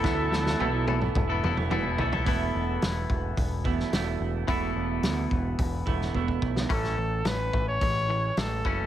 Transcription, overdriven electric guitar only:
X:1
M:4/4
L:1/16
Q:1/4=108
K:Emix
V:1 name="Overdriven electric guitar"
[E,,B,,E,A,B,E]2 [E,A,B,E]2 [E,,B,,E,A,B,E] [E,A,B,E]2 [E,A,B,E]2 [E,A,B,E]2 [E,A,B,E] [E,,B,,E,A,B,E] [E,A,B,E] [E,A,B,E] [E,A,B,E] | [E,,B,,E,A,B,E]8- [E,,B,,E,A,B,E]2 [E,,B,,E,A,B,E]2 [E,,B,,E,A,B,E]4 | [E,,B,,E,A,B,E]8- [E,,B,,E,A,B,E]2 [E,,B,,E,A,B,E]2 [E,,B,,E,A,B,E]4 | A,,4 C2 E,2 G,2 E,2 G,2 E2 |]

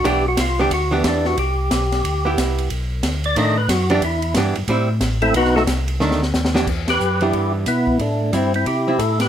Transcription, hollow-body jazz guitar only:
X:1
M:4/4
L:1/8
Q:"Swing" 1/4=181
K:Em
V:1 name="Hollow-body jazz guitar"
[E,B,DG] z2 [E,B,DG] z [E,B,DG]3 | z4 z [B,EG]3 | z4 [^D,A,=D] z2 [E,B,DG] | z2 [E,B,DG] z [G,CE] z3 |
z4 [^D,A,=D] z2 [E,B,DG] | z3 [E,B,DG]3 z2 | z2 [G,CE] z2 [G,CE] z2 |]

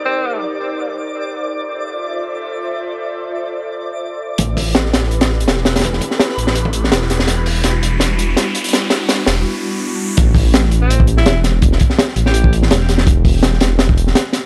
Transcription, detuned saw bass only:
X:1
M:4/4
L:1/8
Q:"Swing 16ths" 1/4=166
K:Am
V:1 name="Detuned saw bass" clef=bass
z8 | z8 | z8 | A,,,3 A,,,3 E,,,2- |
E,,, z2 A,,,3 E,,,2 | E,,,3 E,,,3 z2 | z3 E,,, z4 | A,,,3 A,,,3 E,,,2- |
E,,, z2 A,,,3 E,,,2 | E,,,3 E,,,3 z2 |]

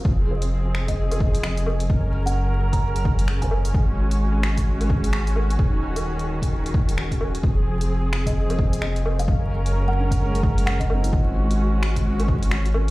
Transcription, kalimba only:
X:1
M:4/4
L:1/16
Q:"Swing 16ths" 1/4=130
K:Fphr
V:1 name="Kalimba"
z6 z e2 z3 e2 z2 | z3 g2 z2 b2 z4 a3 | z16 | z16 |
z6 z e2 z3 e2 z f | z4 z g2 z4 z g e3 | z16 |]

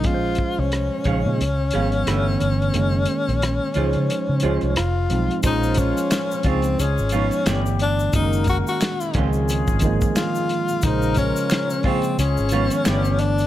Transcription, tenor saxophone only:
X:1
M:4/4
L:1/16
Q:"Swing 16ths" 1/4=89
K:Bbm
V:1 name="Tenor saxophone"
F3 D12- D- | D12 F4 | E2 D4 C2 D6 =D2 | E2 G G4 z4 z F4 |
E2 D4 C2 D6 =D2 |]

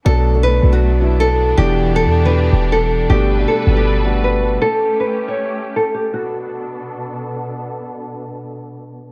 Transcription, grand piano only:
X:1
M:4/4
L:1/16
Q:1/4=158
K:Bm
V:1 name="Grand piano"
[B,,F,DA]2 z [B,,F,DA]2 z [B,,F,DA]3 z [B,,F,DE]4 z2 | [B,,E,DG]4- [B,,E,DG] z2 [B,,E,DG]4- [B,,E,DG] z4 | [B,,A,DG]2 z [B,,A,DG]2 z [B,,A,DG]3 z [B,,A,DF]4 z2 | z16 |
z16 | z16 |]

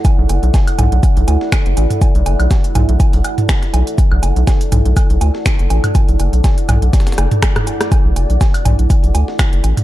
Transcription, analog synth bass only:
X:1
M:4/4
L:1/16
Q:"Swing 16ths" 1/4=122
K:Bm
V:1 name="Analog synth bass" clef=bass
z B,,, F,,, B,,, z2 B,,, B,,, z B,,, D,, z2 F,,, A,,, z | z B,,, F,,, B,,, z2 B,,, B,,, z B,,, z4 B,,, z | z B,,, F,,, B,,, z2 B,,, B,,, z B,,, D,, z2 F,,, A,,, z | z B,,, F,,, B,,, z2 B,,, B,,, z2 F,,, z4 z |
z B,,, F,,, B,,, z2 B,,, B,,, z B,,, D,, z2 F,,, A,,, z |]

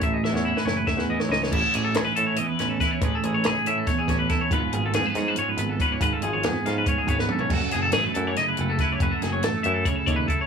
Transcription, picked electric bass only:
X:1
M:7/8
L:1/16
Q:1/4=140
K:C#m
V:1 name="Picked electric bass" clef=bass
A,,,3 E,,2 z F,,,3 E,,2 z C,,2 | A,,, z A,,,2 C,, z A,,2 z2 A,,,2 z2 | A,,, z A,,,2 C,, z A,,2 z2 A,,,2 z2 | G,,, z G,,,2 ^E,, z G,,2 z2 G,,,2 z2 |
G,,, z G,,,2 ^E,, z G,,2 z2 G,,,2 z2 | F,,, z F,,,2 A,,, z F,,2 z2 F,,,2 z2 | F,,, z F,,,2 A,,, z F,,2 z2 D,,2 z2 |]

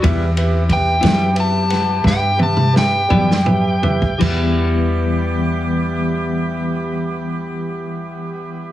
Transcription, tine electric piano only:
X:1
M:12/8
L:1/8
Q:3/8=53
K:Em
V:1 name="Tine electric piano"
[GBe] [GBe] [GBe] [GBe] [GBe] [GBf] [GBe] [GBe] [GBe] [GBd] [GBe] [GBe] | [GBe]12 |]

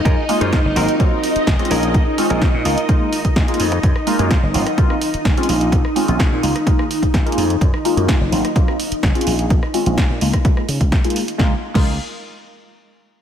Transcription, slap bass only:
X:1
M:4/4
L:1/16
Q:1/4=127
K:Db
V:1 name="Slap bass" clef=bass
G,, z2 G,, z G,,, A,,, z4 z G,,, z B,,, z | B,,, z2 B,,, z B,, D,, z4 z B,,, z F,, z | G,, z2 G,, z G,,, A,,, z4 z G,,, z B,,, z | B,,, z2 B,,, z B,, D,, z4 z B,,, z F,, z |
G,, z2 G,, z G,,, A,,, z4 z G,,, z B,,, z | B,,, z2 B,,, z B,, D,, z3 D, D,, z4 | D,, z2 D,,2 z8 z3 |]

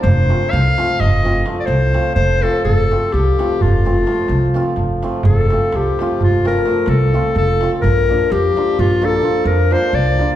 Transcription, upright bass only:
X:1
M:11/8
L:1/8
Q:1/4=127
K:F
V:1 name="Upright bass" clef=bass
F,,,2 C,, z F,,,3 C,,2 F,,,2 | F,,,2 C,, z F,,,3 C,,2 F,,,2 | F,,,2 C,, z F,,,3 C,,2 F,,,2 | B,,,2 F,, z B,,,3 F,,2 C,,2 |]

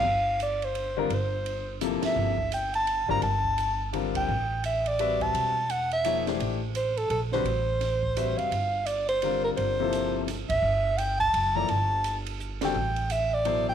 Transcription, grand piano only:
X:1
M:3/4
L:1/8
Q:"Swing" 1/4=170
K:Gdor
V:1 name="Grand piano"
z4 z [D,G,CFB] | z4 [C,F,B,EA]2- | [C,F,B,EA] z4 [D,G,CFB] | z4 [D,G,CFB]2 |
z4 [G,C^F=Be]2- | [G,C^F=Be] z3 [=F,_B,_E_A^c] [=E,=A,DG=c]- | [E,A,DGc] z4 [D,G,C^F=B] | z4 [G,C^F=Be]2 |
z4 [D,G,CFB]2- | [D,G,CFB] [C,F,B,EA]3 z2 | z4 z [F,B,EAd] | z4 z [D,G,C^FA] |
z4 [=B,,^F,EAc]2 |]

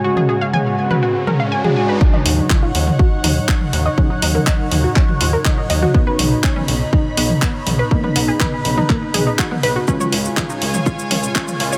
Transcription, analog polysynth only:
X:1
M:4/4
L:1/16
Q:1/4=122
K:Ebm
V:1 name="Analog polysynth" clef=bass
[D,A,G]6 [D,A,G]6- [D,A,G] [D,A,G] [D,A,G]2 | [D,G,E]6 [D,G,E]8- [D,G,E]2 | [D,G,E]6 [D,G,E]8- [D,G,E]2 | [^C,=B,^D]6 [C,B,D]8- [C,B,D]2 |
[^C,=B,^D]6 [C,B,D]8- [C,B,D]2 | [D,A,F]6 [D,A,F]8- [D,A,F]2 |]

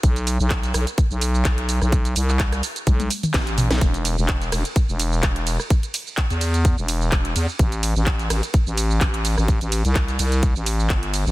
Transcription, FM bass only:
X:1
M:4/4
L:1/16
Q:"Swing 16ths" 1/4=127
K:Ador
V:1 name="FM bass" clef=bass
B,,,3 B,,,3 B,,, z2 B,,,3 B,,,3 B,,,- | B,,,2 C,,4 z2 B,,,2 z2 A,,,3 B,,, | E,,,3 E,,,3 E,,, z2 E,,,3 E,,,3 z | z4 z E,,4 E,,,3 E,,,2 E,, z |
A,,,3 A,,,3 A,,, z2 A,,,3 A,,,3 A,,,- | A,,, A,,,2 C,,3 C,,3 A,,,3 G,,,3 A,,, |]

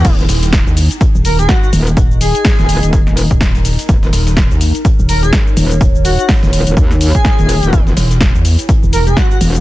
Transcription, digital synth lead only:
X:1
M:4/4
L:1/16
Q:"Swing 16ths" 1/4=125
K:Ebphr
V:1 name="Digital synth lead"
z8 z2 B A G G z2 | z2 A6 z8 | z8 z2 B A z4 | z2 G G z6 z A4- A |
z8 z2 B ^G _G G z2 |]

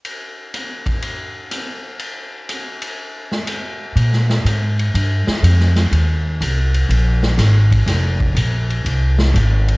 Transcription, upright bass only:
X:1
M:4/4
L:1/8
Q:"Swing" 1/4=122
K:Cphr
V:1 name="Upright bass" clef=bass
z8 | z8 | B,,2 A,,2 G,, z F,,2 | E,,2 C,,2 B,,,2 A,,,2 |
F,,,2 B,,,2 C,,2 A,,,2 |]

